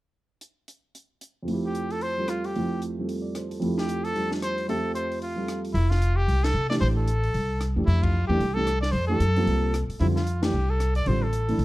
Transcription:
0.41 closed hi-hat
0.68 closed hi-hat
0.95 closed hi-hat
1.21 closed hi-hat
1.43 F2 F3
1.48 A3 E4, open hi-hat
1.54 G4
1.65 G4
1.75 closed hi-hat
1.90 A4, open hi-hat
2.01 C5, open hi-hat
2.18 G3 C4 F4 A4
2.28 F4, cross-stick, closed hi-hat
2.44 G4, open hi-hat
2.56 F2 F3 A3 E4 G4, open hi-hat
2.82 closed hi-hat
2.99 G3 C4 F4 A4
3.09 open hi-hat
3.22 D5
3.35 C5, cross-stick, closed hi-hat
3.49 A4, open hi-hat
3.60 F2 F3 A3 E4, open hi-hat
3.64 G4
3.78 G4, snare
3.89 closed hi-hat
4.04 A4, open hi-hat
4.13 F3 G3 D4 F4, open hi-hat
4.32 snare
4.42 C5, cross-stick, closed hi-hat
4.58 open hi-hat
4.68 F2 F3 A3 G4 A4 E5, open hi-hat
4.95 C5, closed hi-hat
5.12 open hi-hat
5.22 F4, open hi-hat
5.36 G3 C4 F4 A4
5.48 cross-stick, closed hi-hat
5.65 open hi-hat
5.74 F1 E4, open hi-hat
5.90 F4, snare
6.02 closed hi-hat
6.16 G4
6.28 C2, open hi-hat
6.44 A4, snare, ride
6.54 C3
6.69 E3 A3 D4 G4 D5, snare, open hi-hat
6.81 A1 C5, open hi-hat
6.97 A4
7.08 closed hi-hat
7.24 open hi-hat
7.34 C2, open hi-hat
7.61 cross-stick, closed hi-hat
7.76 E2 E3 A3 D4 G4
7.86 F2 E4, open hi-hat
8.03 F4, kick, ride
8.27 E2 E3 A3 D4 G4
8.31 G4
8.39 C2, open hi-hat
8.54 E3 A3 D4 G4 A4
8.67 cross-stick, closed hi-hat
8.81 D5, snare
8.91 F2 C5, open hi-hat
9.07 E3 A3 D4 G4 A4
9.20 F#2, closed hi-hat
9.36 G3 A#3 C4 F4, open hi-hat
9.46 C2, open hi-hat
9.74 cross-stick, closed hi-hat
9.89 muted upright bass stroke, open hi-hat
10.00 F2 D3 G3 C4 E4 F4, open hi-hat
10.16 F4, snare
10.27 closed hi-hat
10.42 E3 A3 D4 G4, snare, ride
10.53 C2
10.70 A4
10.80 cross-stick, closed hi-hat
10.95 D5, open hi-hat
11.06 A1 D3 G3 C4 F4 C5, open hi-hat
11.23 A4
11.33 closed hi-hat
11.48 E3 A3 D4 E4, open hi-hat
11.58 C2, open hi-hat

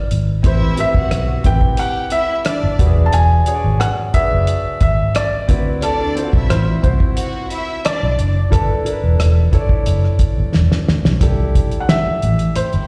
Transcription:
Already playing: D4 E4 A4 A#4 B4
0.11 G#1, closed hi-hat
0.43 A1 C4 E4 G4 B4 C5 E5, kick, closed hi-hat
0.76 C4 E4 G4 B4 E5, closed hi-hat
0.94 G1 F#4 F#5, kick
1.11 B1, cross-stick, closed hi-hat
1.44 A1 C4 E4 G4 B4 G5, kick, closed hi-hat
1.61 kick
1.77 G4 F#5 G5, closed hi-hat
2.10 E4 E5, closed hi-hat
2.45 D4 D5, cross-stick, closed hi-hat
2.63 G1
2.78 E1 D4 F#4 G4 B4, kick, closed hi-hat
2.86 G#4
3.06 A5
3.13 E1 G#5, closed hi-hat
3.45 D4 F#4 G#4 C#5, closed hi-hat
3.54 D5
3.64 G#1
3.80 F#5, cross-stick, closed hi-hat
4.13 D4 F#4 G#4 B4 E5, muted fingered electric bass stroke, kick, closed hi-hat
4.33 F#1
4.47 closed hi-hat
4.81 G#1 E5, kick, closed hi-hat
5.15 D5, cross-stick, closed hi-hat
5.48 D2 C4 E4 F#4 B4, kick, closed hi-hat
5.82 D4 A4 D5, closed hi-hat
6.15 C4 E4 F4 C5, closed hi-hat
6.24 F#4
6.33 B1 E4 E5, kick
6.50 A1 C5, cross-stick, closed hi-hat
6.82 C2 C4 E4 F#4 C5, kick, closed hi-hat
7.00 kick
7.17 F#4 F#5, closed hi-hat
7.50 E4 E5, closed hi-hat
7.84 D4 D5, cross-stick, closed hi-hat
8.03 B1
8.19 F#1, closed hi-hat
8.50 G1 D4 E4 A4 B4, kick, closed hi-hat
8.84 D4 E4 A4 A#4, closed hi-hat
8.93 B4
9.03 E1
9.20 E1, cross-stick, closed hi-hat
9.51 G1 D4 E4 A4 C#5, kick, cross-stick, closed hi-hat
9.61 D5
9.69 kick
9.86 F#1, closed hi-hat
10.04 cross-stick
10.19 muted fingered electric bass stroke, kick, closed hi-hat
10.38 G1
10.54 E1, snare
10.72 snare
10.88 D2, snare
11.05 B1, snare
11.20 C2 D4 E4 G4 A4, kick, closed hi-hat
11.55 kick, closed hi-hat
11.71 closed hi-hat
11.80 F#5
11.89 E5, snare, closed hi-hat
12.06 muted fingered electric bass stroke
12.22 A1, closed hi-hat
12.39 closed hi-hat
12.56 E4 C5 G5, muted fingered electric bass stroke, closed hi-hat
12.73 G1, closed hi-hat

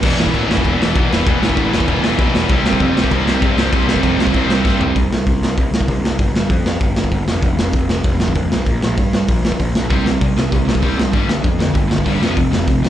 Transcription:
0.02 E1 E2 B2 E3 G3 B3 E4, kick, crash
0.17 E1 E2 B2 E3, snare
0.26 kick
0.33 A1 E2 B2 E3, kick, crash
0.49 E1 E2 B2 E3, snare
0.57 kick
0.64 E1 E2 B2 E3 G3 B3 E4, kick, crash
0.81 E1 E2 B2 E3, snare
0.95 B1 E2 B2 E3, kick, crash
1.11 E1 E2 B2 E3, snare
1.26 E1 E2 B2 E3 G3 B3 E4, kick, crash
1.41 E1 E2 B2 E3, snare
1.49 kick
1.57 A1 E2 B2 E3, kick, crash
1.72 E1 E2 B2 E3, snare
1.80 kick
1.87 E1 E2 B2 E3 G3 B3 E4, kick, crash
2.02 E1 E2 B2 E3, snare
2.18 B1 E2 B2 E3, kick, crash
2.33 E1 E2 B2 E3, snare
2.49 C2 C3 G3 C4 E4, kick, crash
2.65 C2 C3 G3 C4, snare
2.73 kick
2.80 F2 C3 G3 C4, kick, crash
2.95 C2 C3 G3 C4, snare
3.04 kick
3.11 C2 C3 G3 C4 E4, kick, crash
3.26 C2 C3 G3 C4, snare
3.42 G2 C3 G3 C4, kick, crash
3.56 C2 C3 G3 C4, snare
3.72 C2 C3 G3 C4 E4, kick, crash
3.87 C2 C3 G3 C4, snare
3.96 kick
4.03 F2 C3 G3 C4, kick, crash
4.17 C2 C3 G3 C4, snare
4.27 kick
4.34 C2 C3 G3 C4 E4, kick, crash
4.48 C2 C3 G3 C4, snare
4.64 G2 C3 G3 C4, kick, snare
4.79 C2 C3 G3 C4, floor tom
4.96 C2, kick, open hi-hat
5.10 C2, snare
5.27 C2, kick, open hi-hat
5.43 snare
5.58 C2, kick, open hi-hat
5.72 C2, snare
5.81 kick
5.88 C2, kick, open hi-hat
6.01 C2, snare
6.19 G1, kick, open hi-hat
6.33 G1, snare
6.49 F2, kick, open hi-hat
6.66 snare
6.81 G1, kick, open hi-hat
6.96 snare
7.04 kick
7.12 G1, kick, open hi-hat
7.26 F1, snare
7.42 F1, kick, open hi-hat
7.59 F1, snare
7.72 F1, kick, open hi-hat
7.89 snare
8.04 F1, kick, open hi-hat
8.20 F1, snare
8.28 kick
8.35 F1, kick, open hi-hat
8.52 B1, snare
8.66 A#1, kick, open hi-hat
8.82 A#1, snare
8.97 G2, kick, open hi-hat
9.13 snare
9.28 A#1, kick, open hi-hat
9.45 snare
9.52 kick
9.59 A#1, kick, open hi-hat
9.75 B1, snare
9.90 C2 C3 G3 C4, kick, open hi-hat
10.06 C2 C3 G3, snare
10.21 C2 C3 G3, kick, open hi-hat
10.37 C3 G3, snare
10.52 C2 C3 G3, kick, open hi-hat
10.67 C2 C3 G3, snare
10.75 kick
10.82 C2 C3 G3 C4, kick, open hi-hat
10.97 C2 C3 G3, snare
11.13 G1 G2 D3 G3, kick, open hi-hat
11.28 G1 G2 D3, snare
11.43 F2 G2 D3, kick, open hi-hat
11.59 G2 D3, snare
11.74 G1 G2 D3, kick, open hi-hat
11.90 G2 D3, snare
11.98 kick
12.05 G1 G2 D3 G3, kick, open hi-hat
12.21 F1 F2 C3 F3, snare
12.37 F1 F2 C3, kick, open hi-hat
12.52 F1 F2 C3, snare
12.67 F1 F2 C3, kick, open hi-hat
12.83 F2 C3, snare

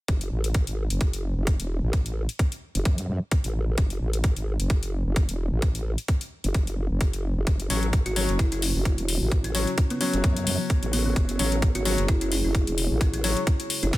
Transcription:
0.08 F#1, kick, closed hi-hat
0.21 closed hi-hat
0.31 A1
0.44 closed hi-hat
0.54 kick, closed hi-hat
0.67 G#1, closed hi-hat
0.90 F#1, closed hi-hat
1.01 kick, closed hi-hat
1.13 closed hi-hat
1.37 F#1
1.47 kick, closed hi-hat
1.60 E1, closed hi-hat
1.83 A1
1.93 kick, closed hi-hat
2.06 closed hi-hat
2.29 closed hi-hat
2.39 kick, closed hi-hat
2.52 closed hi-hat
2.75 F#1, closed hi-hat
2.85 F#2, kick, closed hi-hat
2.98 closed hi-hat
3.09 F#2
3.31 kick, closed hi-hat
3.44 A1, closed hi-hat
3.78 F#1, kick, closed hi-hat
3.90 closed hi-hat
4.01 A1
4.13 closed hi-hat
4.24 kick, closed hi-hat
4.36 G#1, closed hi-hat
4.60 F#1, closed hi-hat
4.70 kick, closed hi-hat
4.83 closed hi-hat
5.06 F#1
5.16 kick, closed hi-hat
5.29 E1, closed hi-hat
5.52 A1
5.62 kick, closed hi-hat
5.75 closed hi-hat
5.98 closed hi-hat
6.08 kick, closed hi-hat
6.21 closed hi-hat
6.44 F#1, closed hi-hat
6.54 F#1, kick, closed hi-hat
6.67 closed hi-hat
6.90 F#1
7.01 kick, closed hi-hat
7.13 closed hi-hat
7.36 F#1
7.47 F#1 C#4 F#4 C#5, kick, closed hi-hat
7.60 closed hi-hat
7.70 A1 F#3 C#4 C#5, open hi-hat
7.83 closed hi-hat
7.93 kick, closed hi-hat
8.06 G#1 F#4, closed hi-hat
8.16 F#3 C#4 C#5, open hi-hat
8.29 F#1, closed hi-hat
8.39 E4, kick, closed hi-hat
8.52 E4, closed hi-hat
8.62 open hi-hat
8.75 F#1
8.85 kick, closed hi-hat
8.98 E1, closed hi-hat
9.08 open hi-hat
9.21 A1
9.32 kick, closed hi-hat
9.44 C#4, closed hi-hat
9.55 F#3 C#4 C#5, open hi-hat
9.67 closed hi-hat
9.78 kick, closed hi-hat
9.90 B3, closed hi-hat
10.01 F#3 B3 C#4 C#5, open hi-hat
10.13 F#1, closed hi-hat
10.24 F#2, kick, closed hi-hat
10.37 closed hi-hat
10.47 F#2, open hi-hat
10.70 kick, closed hi-hat
10.82 A1, closed hi-hat
10.93 B3, open hi-hat
11.06 B3
11.16 F#1 G#4, kick, closed hi-hat
11.29 closed hi-hat
11.39 A1 F#3 C#4 C#5, open hi-hat
11.52 closed hi-hat
11.62 kick, closed hi-hat
11.75 G#1 F#4, closed hi-hat
11.85 F#3 C#4 C#5, open hi-hat
11.98 F#1, closed hi-hat
12.08 E4, kick, closed hi-hat
12.21 E4, closed hi-hat
12.32 E4, open hi-hat
12.44 F#1 E4
12.55 kick, closed hi-hat
12.67 E1, closed hi-hat
12.78 open hi-hat
12.90 A1
13.01 C#4, kick, closed hi-hat
13.14 C#4, closed hi-hat
13.24 F#3 C#4 C#5, open hi-hat
13.37 closed hi-hat
13.47 kick, closed hi-hat
13.60 closed hi-hat
13.70 open hi-hat
13.83 F#1 E4, closed hi-hat
13.93 kick, snare, closed hi-hat

